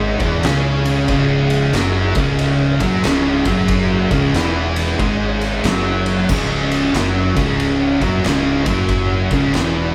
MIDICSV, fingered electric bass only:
0, 0, Header, 1, 2, 480
1, 0, Start_track
1, 0, Key_signature, 4, "minor"
1, 0, Tempo, 650054
1, 808, Time_signature, 4, 2, 24, 8
1, 7344, End_track
2, 0, Start_track
2, 0, Title_t, "Fingered electric bass"
2, 0, Program_c, 0, 33
2, 0, Note_on_c, 0, 32, 85
2, 133, Note_off_c, 0, 32, 0
2, 152, Note_on_c, 0, 28, 94
2, 313, Note_off_c, 0, 28, 0
2, 324, Note_on_c, 0, 37, 99
2, 776, Note_off_c, 0, 37, 0
2, 804, Note_on_c, 0, 25, 97
2, 1257, Note_off_c, 0, 25, 0
2, 1286, Note_on_c, 0, 30, 104
2, 1575, Note_off_c, 0, 30, 0
2, 1596, Note_on_c, 0, 25, 98
2, 2048, Note_off_c, 0, 25, 0
2, 2077, Note_on_c, 0, 30, 100
2, 2236, Note_off_c, 0, 30, 0
2, 2249, Note_on_c, 0, 25, 105
2, 2537, Note_off_c, 0, 25, 0
2, 2557, Note_on_c, 0, 30, 105
2, 3009, Note_off_c, 0, 30, 0
2, 3036, Note_on_c, 0, 25, 108
2, 3196, Note_off_c, 0, 25, 0
2, 3204, Note_on_c, 0, 28, 91
2, 3658, Note_off_c, 0, 28, 0
2, 3689, Note_on_c, 0, 32, 86
2, 4140, Note_off_c, 0, 32, 0
2, 4168, Note_on_c, 0, 30, 97
2, 4620, Note_off_c, 0, 30, 0
2, 4651, Note_on_c, 0, 25, 99
2, 5101, Note_off_c, 0, 25, 0
2, 5129, Note_on_c, 0, 30, 94
2, 5417, Note_off_c, 0, 30, 0
2, 5440, Note_on_c, 0, 25, 100
2, 5890, Note_off_c, 0, 25, 0
2, 5919, Note_on_c, 0, 30, 89
2, 6077, Note_off_c, 0, 30, 0
2, 6094, Note_on_c, 0, 25, 94
2, 6380, Note_off_c, 0, 25, 0
2, 6399, Note_on_c, 0, 30, 89
2, 6849, Note_off_c, 0, 30, 0
2, 6880, Note_on_c, 0, 25, 100
2, 7037, Note_off_c, 0, 25, 0
2, 7055, Note_on_c, 0, 28, 93
2, 7344, Note_off_c, 0, 28, 0
2, 7344, End_track
0, 0, End_of_file